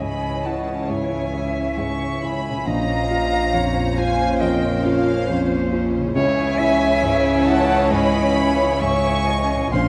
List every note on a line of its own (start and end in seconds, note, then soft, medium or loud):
0.00 0.86 C#2 medium
0.00 2.63 C#2 medium
0.00 0.72 G#2 soft
0.00 2.61 C#3 soft
0.00 2.63 C#3 medium
0.00 2.63 E3 soft
0.00 2.68 G#3 soft
0.00 2.52 C#4 soft
0.00 2.63 C#4 medium
0.00 0.28 E4 soft
0.00 2.63 E4 medium
0.00 2.66 E4 soft
0.00 2.63 C#5 medium
0.00 0.92 D#5 medium
0.00 0.47 G#5 medium
0.00 0.45 B5 medium
0.46 1.16 E4 soft
0.46 0.91 F#5 medium
0.46 0.90 A5 medium
0.89 1.60 G#2 soft
0.89 1.36 C#5 medium
0.89 1.80 E5 medium
0.89 1.78 G#5 medium
1.34 2.05 E4 medium
1.34 2.67 E5 medium
1.77 2.49 G#2 soft
1.77 2.22 G#5 medium
1.77 2.23 C#6 loud
2.22 2.66 E4 soft
2.22 2.68 G#5 medium
2.22 2.67 B5 loud
2.48 6.10 A#2 medium
2.53 6.01 C#4 soft
2.57 6.15 F4 soft
2.62 6.17 C6 soft
2.66 6.12 A#1 medium
2.66 4.37 A#1 medium
2.66 6.12 A#2 medium
2.66 6.16 F3 medium
2.66 5.98 C#4 medium
2.66 6.12 C#4 medium
2.66 5.98 F4 medium
2.66 6.16 C5 medium
2.66 3.56 D#5 medium
2.66 3.97 F5 loud
2.66 3.98 A#5 loud
3.11 3.80 F4 medium
3.54 4.24 F2 medium
3.54 4.00 C#5 medium
3.97 4.68 F4 medium
3.97 4.42 C5 medium
3.97 4.42 F5 loud
3.97 4.41 G#5 loud
4.40 5.12 F2 medium
4.40 5.30 A#4 medium
4.40 4.86 D#5 medium
4.40 4.84 G5 medium
4.85 5.55 F4 medium
4.85 5.72 C#5 medium
4.85 5.73 F5 loud
5.28 5.99 F2 medium
5.28 5.89 C5 medium
5.72 6.16 F4 medium
5.98 9.68 C#3 medium
6.02 9.59 C#4 medium
6.07 9.73 E4 medium
6.15 7.87 C#2 medium
6.15 9.70 C#2 loud
6.15 9.69 C#3 loud
6.15 9.70 E3 medium
6.15 9.69 C#4 loud
6.15 9.70 C#4 loud
6.15 9.70 C#4 medium
6.15 9.70 E4 medium
6.15 6.60 C#5 loud
6.15 9.70 C#5 loud
6.15 7.49 E5 loud
6.15 7.44 G#5 loud
6.59 7.30 E4 medium
6.59 7.93 E5 loud
7.03 7.74 G#2 medium
7.47 8.18 E4 medium
7.47 7.93 F#5 loud
7.47 7.91 A5 loud
7.91 8.63 G#2 medium
7.91 8.38 D#5 medium
7.91 8.80 G#5 loud
7.91 8.82 B5 loud
8.36 9.09 E4 medium
8.36 8.83 C#5 medium
8.81 9.55 G#2 medium
8.81 9.29 E5 medium
8.81 9.74 G#5 loud
8.81 9.73 C#6 loud
9.27 9.73 E4 medium
9.27 9.72 D#5 medium
9.56 9.88 A#2 medium
9.60 9.88 C#4 soft
9.65 9.88 F4 soft
9.69 9.88 A#1 medium
9.69 9.88 C#4 medium
9.69 9.88 C5 soft
9.69 9.88 F5 medium
9.69 9.88 C6 loud
9.73 9.88 A#1 medium
9.73 9.88 A#2 medium
9.73 9.88 F3 medium
9.73 9.88 C#4 medium
9.73 9.88 F4 medium
9.73 9.88 C5 medium